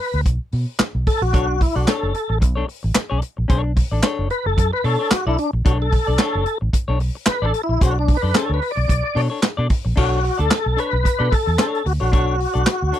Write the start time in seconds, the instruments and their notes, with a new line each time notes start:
Already playing: tonewheel organ B4
0.14 fingered electric bass D2
0.26 fingered electric bass B1, kick, closed hi-hat
0.52 fingered electric bass B2, open hi-hat
0.79 muted fingered electric bass stroke, snare, clap, closed hi-hat
0.95 fingered electric bass B1
1.07 tonewheel organ A4, kick, open hi-hat
1.22 fingered electric bass A#1, tonewheel organ F#4
1.33 fingered electric bass B1, clean electric guitar D4 A4 C#5, kick, closed hi-hat
1.48 muted clean electric guitar stroke
1.61 tonewheel organ E4, muted clean electric guitar stroke, kick, open hi-hat
1.75 fingered electric bass B1, clean electric guitar D4 A4 D5, tonewheel organ F#4
1.87 clean electric guitar D4 A4 C#5, tonewheel organ A4, snare, clap, closed hi-hat
2.03 fingered electric bass F#1
2.14 muted clean electric guitar stroke, closed hi-hat
2.29 fingered electric bass A1, muted clean electric guitar stroke
2.40 fingered electric bass B1, muted clean electric guitar stroke, kick, closed hi-hat
2.55 clean electric guitar D4 A4 C#5
2.67 muted clean electric guitar stroke, open hi-hat
2.83 fingered electric bass A1, muted clean electric guitar stroke
2.95 muted clean electric guitar stroke, snare, clap, closed hi-hat
3.10 fingered electric bass B1, clean electric guitar D4 A4 D5
3.22 closed hi-hat
3.37 fingered electric bass A#1, muted clean electric guitar stroke
3.48 fingered electric bass B1, clean electric guitar D4 A4 C#5, kick, closed hi-hat
3.64 muted clean electric guitar stroke
3.76 muted clean electric guitar stroke, kick, open hi-hat
3.91 fingered electric bass A1, clean electric guitar D4 A4 D5
4.03 clean electric guitar D4 A4 C#5, snare, clap, closed hi-hat
4.19 fingered electric bass F#1
4.30 tonewheel organ B4, muted clean electric guitar stroke, closed hi-hat
4.45 fingered electric bass F#1, tonewheel organ A4, muted clean electric guitar stroke
4.57 fingered electric bass F#2, muted clean electric guitar stroke, kick, closed hi-hat
4.72 tonewheel organ B4, muted clean electric guitar stroke
4.84 fingered electric bass B2, clean electric guitar D4 A4 C#5, tonewheel organ A4, open hi-hat
4.99 clean electric guitar D4 A4 C#5
5.11 tonewheel organ F#4, muted fingered electric bass stroke, snare, clap, closed hi-hat
5.26 fingered electric bass B1, clean electric guitar D4 A4 D5, tonewheel organ E4
5.38 tonewheel organ D4, muted clean electric guitar stroke, closed hi-hat
5.53 fingered electric bass A#1, muted clean electric guitar stroke
5.65 fingered electric bass B1, clean electric guitar D4 A4 C#5, tonewheel organ F#4, kick, closed hi-hat
5.80 tonewheel organ A4, muted clean electric guitar stroke
5.92 muted clean electric guitar stroke, kick, open hi-hat
6.07 fingered electric bass B1, clean electric guitar D4 A4 D5
6.19 clean electric guitar D4 A4 C#5, snare, clap, closed hi-hat
6.35 fingered electric bass F#1
6.46 muted clean electric guitar stroke, closed hi-hat
6.61 fingered electric bass A1, muted clean electric guitar stroke
6.73 muted clean electric guitar stroke, kick, closed hi-hat
6.88 fingered electric bass B1, clean electric guitar D4 A4 C#5
7.00 muted clean electric guitar stroke, open hi-hat
7.15 muted clean electric guitar stroke
7.26 tonewheel organ B4, muted clean electric guitar stroke, muted fingered electric bass stroke, snare, clap, closed hi-hat
7.42 fingered electric bass A1, clean electric guitar D4 A4 D5, tonewheel organ A4
7.54 muted clean electric guitar stroke, closed hi-hat
7.63 tonewheel organ E4
7.69 fingered electric bass A#1, muted clean electric guitar stroke
7.81 fingered electric bass B1, clean electric guitar D4 A4 C#5, tonewheel organ F#4, kick, closed hi-hat
7.96 tonewheel organ D4, muted clean electric guitar stroke
8.08 muted clean electric guitar stroke, kick, open hi-hat
8.17 tonewheel organ B4
8.22 fingered electric bass F#2, clean electric guitar D4 A4 D5
8.35 clean electric guitar C#4 A4 C#5, tonewheel organ A4, snare, clap, closed hi-hat
8.46 clean electric guitar D4
8.50 fingered electric bass D2
8.54 tonewheel organ B4
8.62 muted clean electric guitar stroke, open hi-hat
8.71 tonewheel organ D5
8.76 fingered electric bass B1, muted clean electric guitar stroke
8.88 fingered electric bass B1, muted clean electric guitar stroke, kick, closed hi-hat
9.03 muted clean electric guitar stroke
9.15 fingered electric bass B2, clean electric guitar D4 A4 C#5, open hi-hat
9.30 clean electric guitar D4 A4 C#5
9.43 snare, clap, closed hi-hat
9.57 fingered electric bass B2, clean electric guitar D4 A4 D5
9.69 muted clean electric guitar stroke, kick, open hi-hat
9.85 fingered electric bass A#1, muted clean electric guitar stroke
9.96 fingered electric bass B1, clean electric guitar D4 A4 C#5, tonewheel organ F#4, kick, crash
10.23 muted clean electric guitar stroke, open hi-hat
10.38 fingered electric bass D2, clean electric guitar D4 A4 D5, tonewheel organ A4, closed hi-hat
10.51 snare, clap, closed hi-hat
10.66 fingered electric bass B1
10.77 clean electric guitar D4 A4 C#5, tonewheel organ B4, closed hi-hat
10.92 fingered electric bass B1, muted clean electric guitar stroke
11.04 muted clean electric guitar stroke, kick, closed hi-hat
11.19 fingered electric bass B2, clean electric guitar D4 A4 D5
11.31 tonewheel organ A4, muted clean electric guitar stroke, kick, open hi-hat
11.46 fingered electric bass E2, muted clean electric guitar stroke
11.58 clean electric guitar D4 A4 C#5, snare, clap, closed hi-hat
11.75 closed hi-hat
11.85 fingered electric bass D2, tonewheel organ F#4, muted clean electric guitar stroke, open hi-hat
12.00 fingered electric bass A#1, clean electric guitar D4 A4 C#5, tonewheel organ F#4
12.12 fingered electric bass B1, clean electric guitar D4 A4 C#5, kick, closed hi-hat
12.38 muted clean electric guitar stroke, open hi-hat
12.54 fingered electric bass B1, clean electric guitar D4 A4 D5, closed hi-hat
12.66 snare, clap, closed hi-hat
12.82 fingered electric bass D2
12.92 clean electric guitar D4 A4 C#5, closed hi-hat